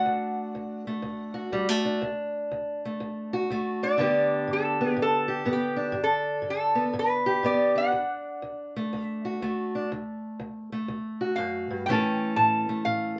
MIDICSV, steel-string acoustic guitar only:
0, 0, Header, 1, 2, 480
1, 0, Start_track
1, 0, Key_signature, 2, "major"
1, 0, Tempo, 492207
1, 60, Time_signature, 4, 2, 24, 8
1, 12866, End_track
2, 0, Start_track
2, 0, Title_t, "Steel-string acoustic guitar"
2, 0, Program_c, 0, 25
2, 0, Note_on_c, 0, 57, 66
2, 0, Note_on_c, 0, 62, 45
2, 0, Note_on_c, 0, 66, 57
2, 56, Note_on_c, 0, 38, 75
2, 503, Note_off_c, 0, 38, 0
2, 534, Note_on_c, 0, 38, 60
2, 845, Note_off_c, 0, 57, 0
2, 849, Note_on_c, 0, 57, 46
2, 981, Note_off_c, 0, 38, 0
2, 997, Note_on_c, 0, 38, 72
2, 1303, Note_off_c, 0, 66, 0
2, 1306, Note_on_c, 0, 66, 60
2, 1452, Note_off_c, 0, 38, 0
2, 1485, Note_on_c, 0, 38, 79
2, 1486, Note_off_c, 0, 57, 0
2, 1490, Note_on_c, 0, 55, 64
2, 1644, Note_off_c, 0, 55, 0
2, 1644, Note_on_c, 0, 57, 47
2, 1802, Note_off_c, 0, 62, 0
2, 1806, Note_on_c, 0, 62, 51
2, 1936, Note_off_c, 0, 38, 0
2, 1945, Note_off_c, 0, 66, 0
2, 1967, Note_on_c, 0, 38, 80
2, 1972, Note_off_c, 0, 57, 0
2, 2416, Note_off_c, 0, 38, 0
2, 2452, Note_on_c, 0, 38, 63
2, 2783, Note_on_c, 0, 57, 50
2, 2898, Note_off_c, 0, 38, 0
2, 2928, Note_on_c, 0, 38, 74
2, 3249, Note_on_c, 0, 66, 61
2, 3377, Note_off_c, 0, 38, 0
2, 3417, Note_off_c, 0, 57, 0
2, 3417, Note_on_c, 0, 38, 71
2, 3428, Note_on_c, 0, 57, 60
2, 3729, Note_off_c, 0, 62, 0
2, 3733, Note_on_c, 0, 62, 53
2, 3861, Note_off_c, 0, 38, 0
2, 3870, Note_on_c, 0, 43, 66
2, 3876, Note_off_c, 0, 66, 0
2, 3879, Note_on_c, 0, 50, 61
2, 3880, Note_off_c, 0, 57, 0
2, 3893, Note_on_c, 0, 59, 60
2, 3899, Note_off_c, 0, 62, 0
2, 3903, Note_on_c, 0, 62, 61
2, 3909, Note_on_c, 0, 67, 64
2, 4328, Note_off_c, 0, 43, 0
2, 4365, Note_on_c, 0, 43, 62
2, 4684, Note_off_c, 0, 59, 0
2, 4688, Note_on_c, 0, 59, 47
2, 4815, Note_off_c, 0, 43, 0
2, 4842, Note_on_c, 0, 43, 71
2, 5137, Note_off_c, 0, 67, 0
2, 5149, Note_on_c, 0, 67, 60
2, 5294, Note_off_c, 0, 43, 0
2, 5312, Note_off_c, 0, 59, 0
2, 5318, Note_on_c, 0, 43, 80
2, 5324, Note_on_c, 0, 59, 57
2, 5618, Note_off_c, 0, 62, 0
2, 5622, Note_on_c, 0, 62, 50
2, 5763, Note_off_c, 0, 43, 0
2, 5774, Note_on_c, 0, 43, 80
2, 5787, Note_off_c, 0, 67, 0
2, 5789, Note_off_c, 0, 59, 0
2, 6241, Note_off_c, 0, 43, 0
2, 6259, Note_on_c, 0, 43, 57
2, 6585, Note_on_c, 0, 59, 51
2, 6724, Note_off_c, 0, 43, 0
2, 6762, Note_on_c, 0, 43, 77
2, 7080, Note_on_c, 0, 67, 63
2, 7216, Note_off_c, 0, 43, 0
2, 7246, Note_off_c, 0, 59, 0
2, 7246, Note_on_c, 0, 43, 76
2, 7259, Note_on_c, 0, 59, 65
2, 7558, Note_off_c, 0, 62, 0
2, 7562, Note_on_c, 0, 62, 46
2, 7698, Note_off_c, 0, 43, 0
2, 7714, Note_off_c, 0, 67, 0
2, 7718, Note_off_c, 0, 59, 0
2, 7725, Note_on_c, 0, 38, 72
2, 7729, Note_off_c, 0, 50, 0
2, 8177, Note_off_c, 0, 38, 0
2, 8213, Note_on_c, 0, 38, 64
2, 8547, Note_on_c, 0, 57, 49
2, 8661, Note_off_c, 0, 38, 0
2, 8707, Note_on_c, 0, 38, 74
2, 9019, Note_on_c, 0, 66, 56
2, 9148, Note_off_c, 0, 38, 0
2, 9187, Note_off_c, 0, 57, 0
2, 9187, Note_on_c, 0, 38, 79
2, 9191, Note_on_c, 0, 57, 63
2, 9505, Note_off_c, 0, 62, 0
2, 9508, Note_on_c, 0, 62, 50
2, 9629, Note_off_c, 0, 38, 0
2, 9643, Note_off_c, 0, 66, 0
2, 9648, Note_off_c, 0, 62, 0
2, 9672, Note_on_c, 0, 38, 75
2, 10111, Note_off_c, 0, 38, 0
2, 10137, Note_on_c, 0, 38, 65
2, 10454, Note_off_c, 0, 57, 0
2, 10458, Note_on_c, 0, 57, 49
2, 10584, Note_off_c, 0, 38, 0
2, 10612, Note_on_c, 0, 38, 70
2, 10930, Note_on_c, 0, 66, 60
2, 11061, Note_off_c, 0, 38, 0
2, 11096, Note_on_c, 0, 42, 63
2, 11407, Note_off_c, 0, 42, 0
2, 11415, Note_on_c, 0, 43, 53
2, 11559, Note_off_c, 0, 66, 0
2, 11563, Note_off_c, 0, 57, 0
2, 11582, Note_off_c, 0, 43, 0
2, 11588, Note_on_c, 0, 45, 74
2, 11595, Note_on_c, 0, 52, 64
2, 11604, Note_on_c, 0, 57, 66
2, 11609, Note_on_c, 0, 61, 66
2, 11620, Note_on_c, 0, 69, 73
2, 12030, Note_off_c, 0, 45, 0
2, 12061, Note_on_c, 0, 45, 61
2, 12364, Note_off_c, 0, 57, 0
2, 12376, Note_on_c, 0, 57, 49
2, 12506, Note_off_c, 0, 45, 0
2, 12532, Note_on_c, 0, 45, 64
2, 12843, Note_off_c, 0, 69, 0
2, 12866, Note_off_c, 0, 45, 0
2, 12866, Note_off_c, 0, 52, 0
2, 12866, Note_off_c, 0, 57, 0
2, 12866, Note_off_c, 0, 61, 0
2, 12866, End_track
0, 0, End_of_file